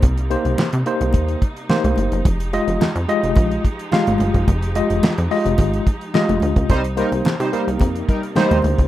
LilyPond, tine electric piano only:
\new Staff \with { instrumentName = "Tine electric piano" } { \time 4/4 \key f \minor \tempo 4 = 108 r8 <bes ees' g' c''>8 r8 <bes ees' g' c''>4 r8 <bes ees' g' c''>4 | r8 <aes f' g' ees''>8 r8 <aes f' g' ees''>4 r8 <aes f' g' f''>4 | r8 <aes f' g' ees''>8 r8 <aes f' g' ees''>4 r8 <aes f' g' ees''>4 | r8 <bes ees' g' c''>8 r8 <bes ees' g' bes'>4 r8 <bes ees' g' c''>4 | }